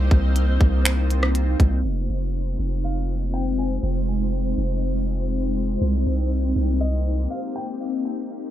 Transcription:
Already playing: C2 A#3 C4 D#4 F4 C5
0.11 C2, kick
0.36 closed hi-hat
0.61 C2, kick
0.85 finger snap, closed hi-hat
1.11 closed hi-hat
1.23 cross-stick
1.35 closed hi-hat
1.60 C2, kick, closed hi-hat
1.85 F1 G#3 C4 D#4 F4 C5
2.09 F1
2.59 F1
2.84 F5
3.34 G5
3.58 G#5
3.83 F1
4.57 F1
5.81 C2 A#3 G4
6.06 C2
6.56 C2
6.81 D#5
7.30 F5
7.56 G5
7.80 A#4

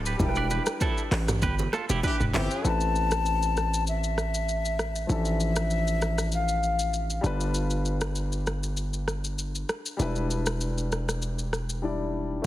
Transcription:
Already playing: D1
0.06 G4 B4, shaker
0.17 E1 G3 D4 E4, kick, low conga, shaker
0.21 A#4 G5
0.29 B4
0.35 B4 D5, shaker
0.50 G4 B4, low bongo, shaker
0.66 cross-stick, shaker
0.81 E4 A4, kick, high bongo, shaker
0.98 shaker
1.11 A1, cross-stick, clap, open hi-hat, shaker
1.28 cross-stick, mid tom, high bongo, low bongo, shaker
1.42 G1 G4 B4, kick, low conga, shaker
1.59 low bongo, shaker
1.73 F4 A4, cross-stick, high bongo, shaker
1.89 E1 E4 G4, low bongo, shaker
2.03 E3 D4 G4 B4, kick, high bongo, shaker
2.20 E1, mid tom, shaker
2.34 G1 E3 C4 G4, clap, open hi-hat, low conga, shaker
2.51 shaker
2.62 A1 A3 C4 E4 A5, shaker
2.67 B4
2.81 shaker
2.96 shaker
3.11 cross-stick, shaker
3.26 shaker
3.43 shaker
3.57 cross-stick, shaker
3.74 shaker
3.87 E5, shaker
4.04 shaker
4.18 cross-stick, shaker
4.34 shaker
4.49 shaker
4.65 shaker
4.79 cross-stick, shaker
4.96 shaker
5.07 A1 E3 F3 D4, shaker
5.11 A4 E5
5.25 shaker
5.40 shaker
5.56 cross-stick, shaker
5.70 shaker
5.87 shaker
6.02 cross-stick, shaker
6.18 cross-stick, shaker
6.32 F5, shaker
6.48 shaker
6.63 shaker
6.79 shaker
6.93 shaker
7.10 shaker
7.21 G1 G3 D4 F4, shaker
7.26 B4
7.41 shaker
7.54 shaker
7.70 shaker
7.85 shaker
8.01 cross-stick, shaker
8.15 shaker
8.32 shaker
8.47 cross-stick, shaker
8.63 shaker
8.77 shaker
8.93 shaker
9.08 cross-stick, shaker
9.24 shaker
9.39 shaker
9.55 shaker
9.69 cross-stick, shaker
9.86 shaker
9.97 E1 G3 D4 E4, shaker
10.02 B4
10.15 shaker
10.31 shaker
10.46 cross-stick, shaker
10.61 shaker
10.78 shaker
10.92 cross-stick, shaker
11.09 cross-stick, shaker
11.22 shaker
11.39 shaker
11.53 cross-stick, shaker
11.69 shaker
11.82 G3 D4 E4 D5
12.42 A3

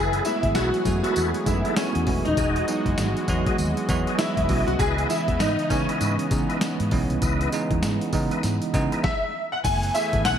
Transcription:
Already playing: F#1 E3 F#3 B3 E4 G#4 A4 B4
0.13 closed hi-hat
0.25 G#3 A3 B3 E4, closed hi-hat, tambourine
0.43 G#1, kick, closed hi-hat
0.55 B1 E4 F#4 G#4 A4 B4, snare, closed hi-hat, tambourine
0.74 closed hi-hat
0.85 F#2 G#3 A3 B3 F#4, kick, closed hi-hat, tambourine
1.03 E4 F#4 G#4 A4 B4, closed hi-hat
1.16 E2 E4 G#4 A4 B4, closed hi-hat, tambourine
1.34 closed hi-hat
1.46 F#2 G#3 A3 B3 D#4 E4, kick, closed hi-hat, tambourine
1.54 E4
1.64 E4 G#4 A4 B4, closed hi-hat
1.76 C#4, snare, closed hi-hat, tambourine
1.95 E2, closed hi-hat
2.07 E1 G#3 A3 B3 F#4, kick, open hi-hat
2.25 D#1 D#4, closed hi-hat
2.37 E1 G#3 F#4 G#4 D#5, kick, closed hi-hat, tambourine
2.56 closed hi-hat
2.67 F#3 G#3 B3 D#4, closed hi-hat, tambourine
2.86 F#1, kick, closed hi-hat
2.98 G#1, snare, closed hi-hat, tambourine
3.17 closed hi-hat
3.28 E2 F#3 G#3 B3 F#4, kick, closed hi-hat, tambourine
3.46 F#4 G#4 D#5, kick, closed hi-hat
3.58 D#2, closed hi-hat, tambourine
3.77 closed hi-hat
3.89 E2 F#3 G#3 B3 F#4, kick, closed hi-hat, tambourine
4.07 F#4 G#4 D#5, closed hi-hat
4.18 E4, snare, closed hi-hat, tambourine
4.37 E1, kick, closed hi-hat
4.49 B1 F#3 G#3 B3 C#4 F#4 G#4 D#5, kick, open hi-hat
4.67 C2 F#4, closed hi-hat
4.79 C#2 C#3 B3 E4 G#4 B4 D#5, kick, closed hi-hat, tambourine
4.98 closed hi-hat
5.09 E3 G#3 B3 E4 D#5, closed hi-hat, tambourine
5.28 E2, kick, closed hi-hat
5.39 G#2 D#4 E4 B4 D#5, snare, closed hi-hat, tambourine
5.59 closed hi-hat
5.70 C#3 E3 G#3 B3 C#4 D#4, kick, closed hi-hat, tambourine
5.89 E4 B4 D#5, closed hi-hat
6.00 G#2 E4 B4 D#5, closed hi-hat, tambourine
6.19 closed hi-hat
6.31 C#3 E3 G#3 B3 D#4, kick, closed hi-hat, tambourine
6.49 E4 B4 D#5, closed hi-hat
6.61 snare, closed hi-hat, tambourine
6.80 G#2, closed hi-hat
6.91 B1 E3 G#3 B3 C#4, kick, open hi-hat
7.10 C2, closed hi-hat
7.22 C#2 E4 B4 D#5, kick, closed hi-hat, tambourine
7.41 closed hi-hat
7.52 E3 G#3 B3 D#4, closed hi-hat, tambourine
7.71 E2, kick, closed hi-hat
7.83 G#2, snare, closed hi-hat, tambourine
8.01 closed hi-hat
8.13 C#3 E3 G#3 B3 D#4, kick, open hi-hat, tambourine
8.31 E4 B4 D#5, closed hi-hat
8.43 G#2, snare, closed hi-hat, tambourine
8.62 closed hi-hat
8.73 C#3 E3 G#3 B3 D#4, kick, closed hi-hat, tambourine
8.92 E4 B4 D#5, closed hi-hat
9.03 E5, kick, snare
9.52 F#5
9.64 F#1 E3 A3 B3 G#5, kick, closed hi-hat, crash, tambourine
9.83 closed hi-hat
9.94 A3 B3 E4 G#4 E5, closed hi-hat, tambourine
10.13 G#1, kick, closed hi-hat
10.25 F#5, snare, closed hi-hat, tambourine

